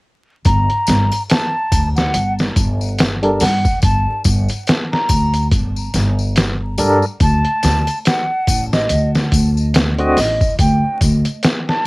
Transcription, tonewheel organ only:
3.22 G3 D4 A4 A#4
6.78 G3 D4 A4 A#4
9.98 D3 C4 F#4 D#5

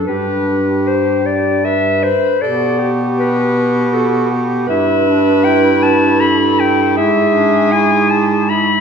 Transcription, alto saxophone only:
0.08 G4
0.48 G4
1.65 B4
2.41 A4
2.79 G4
3.92 F#4
4.30 G4
4.67 B4
6.20 A4
6.97 G#4
8.50 E4

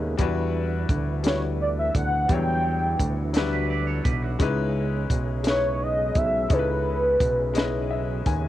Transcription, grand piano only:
Already playing: G#3 C#4 D#4 E4 B4
0.18 G3 D4 E4 F#4
0.22 B4
1.23 G3 D4 E4 F#4 B4
2.28 F#3 G3 D4 E4
2.33 C#5
3.33 F#3 D4 E4 F#4 B4
3.39 G3
4.39 G#3 C#4 D#4 E4 B4
5.43 G#3 C#4 D#4 E4
5.47 B4
6.49 G#3 C#4 D#4 E4
6.53 A4
6.59 B4
7.54 G#3 C#4 E4 D#5
7.58 B4
7.91 E5
8.26 G#5

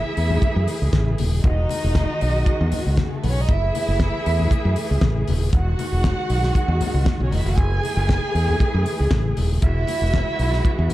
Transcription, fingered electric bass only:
0.17 E2
0.42 muted fingered electric bass stroke
0.56 F#2
0.82 C#2
0.93 A1
1.19 D#1
1.44 E1
1.84 E1
2.22 B1
2.47 muted fingered electric bass stroke
2.61 E2
2.87 C#2
3.24 B1
3.49 F#1
3.88 F#1
4.26 E2
4.51 muted fingered electric bass stroke
4.65 F#2
4.91 C#2
5.02 A1
5.29 D#1
5.53 E1
5.92 E1
6.30 B1
6.56 muted fingered electric bass stroke
6.68 E2
6.94 C#2
7.20 B1
7.32 E1
7.45 F1
7.58 F#1
7.97 F#1
8.35 E2
8.61 muted fingered electric bass stroke
8.74 F#2
9.00 C#2
9.11 A1
9.38 D#1
9.63 E1
10.02 E1
10.39 B1
10.65 muted fingered electric bass stroke
10.79 E2

